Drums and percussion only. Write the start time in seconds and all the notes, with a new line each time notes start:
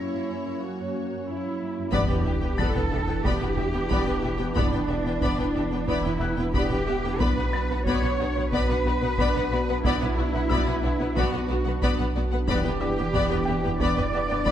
1.93 taiko
2.59 taiko
2.76 taiko low
2.92 taiko low
3.25 taiko
3.58 taiko low
3.90 taiko
4.56 taiko
5.22 taiko
5.88 taiko
6.54 taiko
7.20 taiko
7.86 taiko
8.52 taiko
9.18 taiko
9.85 taiko
10.50 taiko
11.17 taiko
11.82 taiko
12.48 taiko
13.14 taiko
13.80 taiko
14.46 taiko